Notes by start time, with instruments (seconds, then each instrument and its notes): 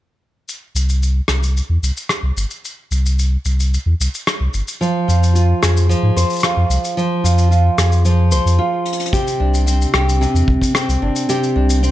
0.49 shaker
0.75 sub bass C2, shaker
0.89 shaker
1.03 shaker
1.28 sub bass C2, cross-stick, shaker
1.43 shaker
1.57 shaker
1.69 sub bass E2
1.82 sub bass C2, shaker
1.97 shaker
2.09 cross-stick, shaker
2.23 sub bass C2
2.36 sub bass G1, shaker
2.51 shaker
2.65 shaker
2.91 sub bass C2, shaker
3.06 shaker
3.19 shaker
3.45 sub bass C2, shaker
3.60 shaker
3.74 shaker
3.86 sub bass E2
4.00 sub bass C2, shaker
4.15 shaker
4.27 cross-stick, shaker
4.40 sub bass C2
4.54 sub bass G1, shaker
4.68 shaker
4.81 nylon-string guitar F3, shaker
5.08 sub bass F2, nylon-string guitar F4, shaker
5.23 shaker
5.35 nylon-string guitar F4, shaker
5.62 sub bass F2, nylon-string guitar G#4, cross-stick, shaker
5.77 shaker
5.89 nylon-string guitar F3, shaker
6.03 sub bass G#2
6.16 sub bass F2, nylon-string guitar C5, shaker
6.30 shaker
6.33 shaker
6.36 shaker
6.40 nylon-string guitar F4, cross-stick, shaker
6.43 shaker
6.57 sub bass F2
6.69 sub bass C2, shaker
6.85 shaker
6.97 nylon-string guitar F3, shaker
7.24 sub bass F2, nylon-string guitar F4, shaker
7.38 shaker
7.51 nylon-string guitar F4, shaker
7.78 sub bass F2, nylon-string guitar G#4, cross-stick, shaker
7.92 shaker
8.05 nylon-string guitar F3, shaker
8.32 sub bass C2, nylon-string guitar C5, shaker
8.45 sub bass F2, shaker
8.59 nylon-string guitar F4
8.86 closed hi-hat
8.93 closed hi-hat
9.00 closed hi-hat
9.06 closed hi-hat
9.13 nylon-string guitar C3 G4, kick, shaker
9.27 shaker
9.40 sub bass C2, nylon-string guitar D4
9.54 shaker
9.66 nylon-string guitar C4, shaker
9.81 shaker
9.93 sub bass C2, nylon-string guitar G4, cross-stick
10.09 shaker
10.21 nylon-string guitar C3, shaker
10.34 sub bass E2, shaker
10.48 sub bass C2, kick
10.62 kick, shaker
10.75 nylon-string guitar C4, cross-stick, shaker
10.89 sub bass C2, shaker
11.02 sub bass G1, nylon-string guitar D4
11.16 shaker
11.29 nylon-string guitar C3 G4, shaker
11.44 shaker
11.56 sub bass C2, nylon-string guitar D4
11.70 shaker
11.83 nylon-string guitar C4, shaker